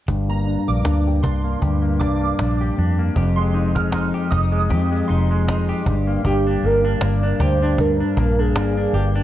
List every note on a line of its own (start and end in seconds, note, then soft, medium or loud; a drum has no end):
0.08 0.56 G1 medium
0.08 1.61 G2 medium
0.08 1.07 G4 medium
0.08 cajon bass medium
0.29 0.66 A#3 medium
0.29 0.46 A#5 medium
0.46 0.84 D4 medium
0.46 cajon slap soft
0.68 0.82 A#1 medium
0.68 1.43 A#3 medium
0.68 0.84 D6 medium
0.85 1.24 D2 medium
0.85 1.22 D4 medium
0.85 cajon slap medium
1.07 1.62 G4 medium
1.23 1.54 C2 medium
1.23 2.00 D4 medium
1.23 1.60 C6 medium
1.23 cajon bass medium
1.23 cajon slap soft
1.44 1.81 A#3 soft
1.62 2.01 D2 medium
1.62 3.16 G2 medium
1.62 2.60 G4 medium
1.62 cajon bass medium
1.62 cajon slap soft
1.82 2.20 A#3 medium
2.00 2.32 C2 medium
2.00 2.38 D4 medium
2.00 2.56 D6 medium
2.00 cajon bass medium
2.21 2.98 A#3 medium
2.39 2.70 A#1 medium
2.39 2.77 D4 medium
2.39 cajon slap medium
2.61 3.17 G4 medium
2.77 3.09 F2 medium
2.77 3.25 D4 soft
2.77 cajon slap soft
2.99 3.25 A#3 medium
3.16 4.10 F1 medium
3.16 4.68 F2 medium
3.16 4.14 G4 medium
3.16 cajon bass medium
3.36 3.74 G#3 medium
3.36 3.53 C6 medium
3.54 3.92 D#4 medium
3.54 cajon slap soft
3.75 4.51 G#3 medium
3.75 3.92 F6 medium
3.75 cajon bass medium
3.92 4.30 D#4 medium
3.92 cajon slap medium
4.14 4.70 G4 medium
4.31 4.72 F1 medium
4.31 5.08 D#4 medium
4.31 4.68 D#6 medium
4.31 cajon bass medium
4.31 cajon slap soft
4.52 4.90 G#3 medium
4.70 5.85 F2 medium
4.70 5.01 F2 medium
4.70 5.69 G4 medium
4.70 cajon bass medium
4.70 cajon slap soft
4.91 5.30 G#3 soft
5.08 5.71 F1 medium
5.08 5.47 D#4 medium
5.08 5.64 C6 medium
5.08 cajon slap soft
5.31 5.95 G#3 medium
5.48 5.94 D#4 medium
5.48 cajon slap medium
5.69 6.25 G4 medium
5.86 6.17 G1 medium
5.86 6.24 G2 medium
5.86 cajon bass medium
6.07 6.64 A#3 medium
6.25 6.55 G1 medium
6.25 7.78 G2 medium
6.25 7.40 G4 medium
6.25 6.67 G4 loud
6.25 cajon bass medium
6.47 6.83 D4 medium
6.62 6.94 G1 medium
6.62 7.00 A#3 medium
6.62 7.04 A#4 loud
6.62 cajon slap soft
6.85 7.22 D4 medium
7.01 7.32 G1 medium
7.01 8.16 A#3 medium
7.01 7.43 D5 loud
7.01 cajon slap medium
7.23 7.61 D4 medium
7.40 8.01 D2 medium
7.40 8.94 G4 medium
7.40 7.79 C5 medium
7.40 cajon bass medium
7.40 cajon slap soft
7.62 7.99 D4 medium
7.78 9.23 G2 medium
7.78 8.41 A#4 medium
7.78 cajon bass medium
7.78 cajon slap soft
8.00 8.38 D4 medium
8.17 8.55 A#1 medium
8.17 8.55 A#3 medium
8.17 cajon bass medium
8.39 8.76 D4 medium
8.39 8.96 G#4 medium
8.55 8.86 G1 medium
8.55 9.23 A#3 medium
8.55 cajon slap loud
8.77 9.14 D4 medium
8.93 9.23 G1 medium
8.93 9.23 G4 medium
8.93 9.23 G4 loud
8.93 cajon slap soft
9.16 9.23 D4 medium